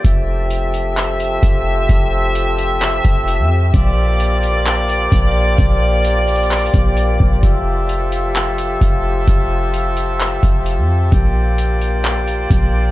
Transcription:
0.04 1.39 F1 loud
0.04 3.70 F3 medium
0.04 3.70 C4 medium
0.04 3.70 G4 medium
0.04 3.70 A4 medium
0.04 3.70 E5 medium
0.04 kick loud
0.04 closed hi-hat medium
0.51 closed hi-hat medium
0.74 closed hi-hat medium
0.97 clap loud
0.97 closed hi-hat medium
1.20 closed hi-hat medium
1.43 1.87 F1 loud
1.43 kick loud
1.43 closed hi-hat medium
1.89 3.01 F1 loud
1.89 kick loud
1.89 closed hi-hat medium
2.35 closed hi-hat medium
2.59 closed hi-hat medium
2.82 clap loud
2.82 closed hi-hat medium
3.05 3.40 F1 loud
3.05 kick loud
3.05 closed hi-hat medium
3.28 closed hi-hat medium
3.39 3.72 F2 loud
3.74 5.08 A#1 loud
3.74 7.39 A#3 medium
3.74 11.08 F4 medium
3.74 12.91 G4 medium
3.74 7.39 C5 medium
3.74 7.39 D5 medium
3.74 kick loud
3.74 closed hi-hat medium
4.20 closed hi-hat medium
4.43 closed hi-hat medium
4.66 clap loud
4.66 closed hi-hat medium
4.89 closed hi-hat medium
5.12 5.56 A#1 loud
5.12 kick loud
5.12 closed hi-hat medium
5.58 6.70 A#1 loud
5.58 kick loud
5.58 closed hi-hat medium
6.05 closed hi-hat medium
6.28 closed hi-hat soft
6.35 closed hi-hat soft
6.43 closed hi-hat medium
6.51 clap loud
6.51 closed hi-hat medium
6.59 closed hi-hat medium
6.66 closed hi-hat medium
6.74 7.18 A#1 loud
6.74 kick medium
6.74 closed hi-hat medium
6.97 closed hi-hat medium
7.20 7.42 A#1 loud
7.20 kick loud
7.43 8.78 F1 loud
7.43 11.09 F3 medium
7.43 11.09 A4 medium
7.43 11.09 E5 medium
7.43 kick loud
7.43 closed hi-hat medium
7.89 closed hi-hat medium
8.12 closed hi-hat medium
8.35 clap loud
8.35 closed hi-hat medium
8.58 closed hi-hat medium
8.81 9.26 F1 loud
8.81 kick loud
8.81 closed hi-hat medium
9.28 10.39 F1 loud
9.28 kick loud
9.28 closed hi-hat medium
9.74 closed hi-hat medium
9.97 closed hi-hat medium
10.20 clap loud
10.20 closed hi-hat medium
10.43 10.79 F1 loud
10.43 kick loud
10.43 closed hi-hat medium
10.66 closed hi-hat medium
10.78 11.11 F2 loud
11.12 12.47 A#1 loud
11.12 12.91 A#3 medium
11.12 12.91 F4 medium
11.12 12.91 C5 medium
11.12 12.91 D5 medium
11.12 kick loud
11.12 closed hi-hat medium
11.58 closed hi-hat medium
11.81 closed hi-hat medium
12.05 clap loud
12.05 closed hi-hat medium
12.28 closed hi-hat medium
12.50 12.91 A#1 loud
12.50 kick loud
12.50 closed hi-hat medium

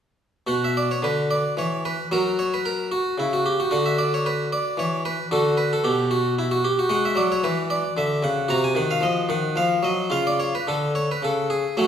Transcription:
0.47 0.87 B2 medium
0.47 2.06 F#4 soft
0.47 0.62 F#5 medium
0.64 0.77 E5 medium
0.77 0.90 D5 medium
0.91 1.04 C#5 medium
1.02 1.42 D3 medium
1.02 1.31 B4 medium
1.31 1.53 D5 medium
1.57 1.96 E3 medium
1.57 1.85 C#5 medium
1.85 2.08 B4 medium
2.11 2.89 F#3 medium
2.11 2.90 F#4 soft
2.11 2.35 A#4 medium
2.39 2.52 C#5 medium
2.54 2.66 B4 medium
2.66 2.88 A#4 medium
2.92 3.14 F#4 medium
3.18 3.57 C#3 soft
3.18 3.32 E4 medium
3.33 3.46 F#4 medium
3.46 3.59 G4 medium
3.60 3.70 F#4 medium
3.71 4.48 D3 medium
3.71 5.27 F#4 soft
3.71 3.86 F#5 medium
3.86 3.99 E5 medium
3.98 4.12 D5 medium
4.14 4.26 C#5 medium
4.26 4.48 B4 medium
4.53 4.75 D5 medium
4.77 5.16 E3 medium
4.77 5.01 C#5 medium
5.05 5.28 B4 medium
5.31 5.70 D3 medium
5.31 6.10 F#4 soft
5.31 5.55 A4 medium
5.57 5.71 B4 medium
5.73 5.86 A4 medium
5.84 6.61 B2 medium
5.84 6.08 G4 medium
6.11 6.34 F#4 medium
6.39 6.52 E4 medium
6.51 6.65 F#4 medium
6.64 6.78 G4 medium
6.79 6.88 F#4 medium
6.89 7.16 G#3 medium
6.89 8.45 F#4 soft
6.89 7.04 F#5 loud
7.05 7.18 E5 medium
7.15 7.42 F#3 medium
7.15 7.31 D5 medium
7.32 7.45 C#5 medium
7.43 7.82 E3 medium
7.43 7.71 B4 medium
7.70 7.93 D5 medium
7.97 8.22 D3 medium
7.97 8.24 E5 medium
8.23 8.48 C#3 medium
8.23 8.50 F#5 medium
8.48 8.75 C3 medium
8.48 10.07 F#4 soft
8.48 8.64 A#5 loud
8.64 8.77 G#5 medium
8.75 9.02 D#3 medium
8.75 8.90 F#5 medium
8.91 9.04 F5 medium
9.01 9.28 F3 medium
9.01 9.26 D#5 medium
9.29 9.55 D#3 medium
9.29 9.57 F#5 medium
9.56 9.83 F3 medium
9.56 9.85 F5 medium
9.83 10.10 F#3 medium
9.83 10.12 D#5 medium
10.10 10.50 C#3 medium
10.10 10.61 F4 soft
10.10 10.26 F5 medium
10.27 10.40 D5 medium
10.40 10.53 C#5 medium
10.55 10.68 B4 medium
10.67 11.07 D3 medium
10.67 10.91 A4 medium
10.95 11.08 C#5 medium
11.11 11.23 B4 medium
11.22 11.63 C#3 soft
11.22 11.47 A4 medium
11.50 11.74 G#4 medium
11.77 11.87 F#3 soft
11.77 11.87 A3 soft
11.77 11.87 C#4 soft
11.77 11.87 F#4 medium

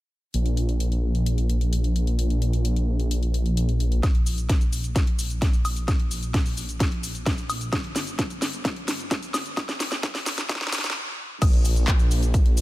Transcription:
0.34 4.01 A#1 medium
0.34 closed hi-hat medium
0.46 closed hi-hat soft
0.57 closed hi-hat medium
0.69 closed hi-hat soft
0.80 closed hi-hat medium
0.92 closed hi-hat soft
1.15 closed hi-hat soft
1.26 closed hi-hat medium
1.38 closed hi-hat soft
1.50 closed hi-hat medium
1.61 closed hi-hat soft
1.73 closed hi-hat medium
1.84 closed hi-hat soft
1.96 closed hi-hat medium
2.07 closed hi-hat soft
2.19 closed hi-hat medium
2.30 closed hi-hat soft
2.42 closed hi-hat medium
2.53 closed hi-hat soft
2.65 closed hi-hat medium
2.76 closed hi-hat soft
3.00 closed hi-hat soft
3.11 closed hi-hat medium
3.23 closed hi-hat soft
3.34 closed hi-hat medium
3.46 closed hi-hat soft
3.57 closed hi-hat medium
3.69 closed hi-hat soft
3.80 closed hi-hat medium
3.92 closed hi-hat soft
4.03 7.70 A#1 medium
4.03 kick loud
4.03 snare soft
4.03 closed hi-hat medium
4.03 cabasa soft
4.03 high woodblock medium
4.15 closed hi-hat soft
4.26 open hi-hat loud
4.26 cabasa medium
4.38 closed hi-hat soft
4.38 cabasa soft
4.49 kick loud
4.49 snare soft
4.49 closed hi-hat medium
4.49 cabasa soft
4.61 closed hi-hat soft
4.61 cabasa soft
4.73 open hi-hat loud
4.73 cabasa medium
4.84 closed hi-hat soft
4.84 cabasa soft
4.96 kick loud
4.96 snare soft
4.96 closed hi-hat medium
4.96 cabasa soft
5.07 closed hi-hat soft
5.19 open hi-hat loud
5.19 cabasa medium
5.30 closed hi-hat soft
5.30 cabasa soft
5.42 kick loud
5.42 snare medium
5.42 closed hi-hat medium
5.42 cabasa soft
5.53 closed hi-hat soft
5.53 cabasa soft
5.65 open hi-hat loud
5.65 cabasa medium
5.65 high woodblock medium
5.76 closed hi-hat soft
5.76 cabasa soft
5.88 kick loud
5.88 snare medium
5.88 closed hi-hat medium
5.88 cabasa soft
5.88 high woodblock medium
6.00 closed hi-hat soft
6.11 open hi-hat loud
6.11 cabasa medium
6.23 closed hi-hat soft
6.23 cabasa soft
6.34 kick loud
6.34 snare medium
6.34 closed hi-hat medium
6.34 cabasa soft
6.46 open hi-hat medium
6.46 cabasa soft
6.57 open hi-hat loud
6.57 cabasa medium
6.69 closed hi-hat soft
6.69 cabasa soft
6.80 kick loud
6.80 snare medium
6.80 closed hi-hat medium
6.80 cabasa soft
6.92 closed hi-hat soft
7.03 open hi-hat loud
7.03 cabasa medium
7.15 closed hi-hat soft
7.15 cabasa soft
7.26 kick loud
7.26 snare medium
7.26 closed hi-hat medium
7.26 cabasa soft
7.38 closed hi-hat soft
7.38 cabasa soft
7.50 open hi-hat loud
7.50 cabasa medium
7.50 high woodblock medium
7.61 closed hi-hat soft
7.61 cabasa soft
7.73 10.96 G1 medium
7.73 kick loud
7.73 snare medium
7.73 closed hi-hat medium
7.73 cabasa soft
7.73 high woodblock medium
7.84 closed hi-hat soft
7.96 snare medium
7.96 open hi-hat loud
7.96 cabasa medium
8.07 closed hi-hat soft
8.07 cabasa soft
8.19 kick loud
8.19 snare medium
8.19 closed hi-hat medium
8.19 cabasa soft
8.30 closed hi-hat soft
8.30 cabasa soft
8.42 snare medium
8.42 open hi-hat loud
8.42 cabasa medium
8.53 closed hi-hat soft
8.53 cabasa soft
8.65 kick loud
8.65 snare medium
8.65 closed hi-hat medium
8.65 cabasa soft
8.76 closed hi-hat soft
8.88 snare medium
8.88 open hi-hat loud
8.88 cabasa medium
9.00 closed hi-hat soft
9.00 cabasa soft
9.11 kick loud
9.11 snare medium
9.11 closed hi-hat medium
9.11 cabasa soft
9.23 closed hi-hat soft
9.23 cabasa soft
9.34 snare medium
9.34 open hi-hat loud
9.34 cabasa medium
9.34 high woodblock medium
9.46 closed hi-hat soft
9.46 cabasa soft
9.57 kick loud
9.57 snare medium
9.57 closed hi-hat medium
9.57 cabasa soft
9.57 high woodblock medium
9.69 snare medium
9.69 closed hi-hat soft
9.69 cabasa soft
9.80 snare medium
9.80 open hi-hat loud
9.80 cabasa medium
9.92 snare medium
9.92 closed hi-hat soft
9.92 cabasa soft
10.03 kick loud
10.03 snare medium
10.03 closed hi-hat medium
10.03 cabasa soft
10.15 snare medium
10.15 open hi-hat medium
10.15 cabasa soft
10.26 snare medium
10.26 open hi-hat loud
10.26 cabasa medium
10.38 snare medium
10.38 closed hi-hat soft
10.38 cabasa soft
10.49 kick loud
10.49 snare loud
10.49 closed hi-hat medium
10.49 cabasa soft
10.55 snare medium
10.61 snare medium
10.61 closed hi-hat soft
10.67 snare medium
10.72 snare loud
10.72 open hi-hat loud
10.72 cabasa medium
10.78 snare medium
10.84 snare medium
10.84 closed hi-hat soft
10.84 cabasa soft
10.90 snare loud
11.42 12.61 A#1 medium
11.42 kick loud
11.42 closed hi-hat medium
11.42 crash loud
11.42 ride medium
11.42 cabasa soft
11.42 high woodblock medium
11.53 closed hi-hat soft
11.65 open hi-hat loud
11.65 cabasa medium
11.76 closed hi-hat soft
11.76 cabasa soft
11.88 kick loud
11.88 clap loud
11.88 closed hi-hat loud
11.88 ride medium
11.88 cabasa soft
11.99 closed hi-hat soft
11.99 cabasa soft
12.11 open hi-hat loud
12.11 cabasa medium
12.23 closed hi-hat soft
12.23 cabasa soft
12.34 kick loud
12.34 closed hi-hat loud
12.34 ride medium
12.34 cabasa soft
12.46 closed hi-hat soft
12.57 open hi-hat loud
12.57 cabasa medium

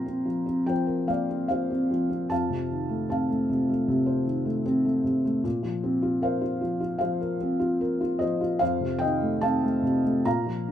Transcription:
0.00 2.28 A#2 soft
0.00 0.24 F3 soft
0.00 1.05 A#3 soft
0.00 0.06 C4 soft
0.00 1.46 F4 soft
0.00 1.08 F5 medium
0.00 0.64 G5 medium
0.00 0.71 A#5 medium
0.00 2.33 C6 medium
0.06 0.45 C4 soft
0.26 0.65 F3 soft
0.46 1.28 C4 soft
0.66 1.89 F3 medium
0.66 1.07 C5 soft
0.66 1.09 G5 medium
0.87 2.26 A#4 soft
1.07 2.26 A#3 soft
1.07 1.48 D5 medium
1.07 1.47 F5 medium
1.29 1.69 C4 soft
1.48 2.29 F4 soft
1.48 2.27 C5 medium
1.48 2.26 F5 medium
1.70 2.08 C4 soft
1.91 2.30 F3 soft
2.10 2.30 C4 soft
2.30 5.41 F2 soft
2.30 3.07 F5 medium
2.30 3.08 A5 medium
2.50 3.48 C3 soft
2.70 4.23 D#3 soft
2.89 3.28 A3 soft
3.09 4.62 C4 soft
3.09 4.63 F5 soft
3.09 4.62 A5 medium
3.30 3.68 A3 soft
3.50 3.87 C3 soft
3.69 4.44 A3 soft
3.88 5.03 C3 medium
4.06 5.40 C5 soft
4.25 5.40 D#3 soft
4.45 4.83 A3 soft
4.66 5.42 C4 medium
4.85 5.24 A3 soft
5.04 5.43 C3 medium
5.25 5.44 A3 soft
5.44 8.57 A#2 medium
5.63 6.60 F3 soft
5.83 7.36 C4 medium
6.02 6.40 F4 medium
6.22 7.19 A#4 medium
6.22 6.98 C5 medium
6.22 6.97 F5 medium
6.41 6.79 F4 medium
6.61 6.99 F3 medium
6.80 7.58 F4 medium
6.98 8.19 F3 medium
6.98 8.17 C5 soft
6.98 8.23 F5 medium
7.21 7.79 A#4 medium
7.41 8.58 C4 medium
7.59 7.99 F4 medium
7.81 8.59 A#4 medium
8.01 8.39 F4 medium
8.19 8.60 F3 soft
8.19 8.58 C5 medium
8.19 8.62 D#5 medium
8.41 8.61 F4 medium
8.59 10.21 F2 medium
8.59 8.99 C5 medium
8.59 9.02 F5 medium
8.81 9.82 C3 medium
8.99 10.21 D#3 medium
8.99 9.40 D#5 medium
8.99 9.42 G5 medium
9.22 9.62 A3 medium
9.41 10.23 C4 medium
9.41 10.22 F5 medium
9.41 10.27 A5 medium
9.63 10.03 A3 medium
9.83 10.24 C3 soft
10.04 10.25 A3 medium
10.25 10.72 A#2 medium
10.25 10.72 F5 medium
10.25 10.72 A#5 medium
10.46 10.72 F3 soft
10.68 10.72 D4 soft

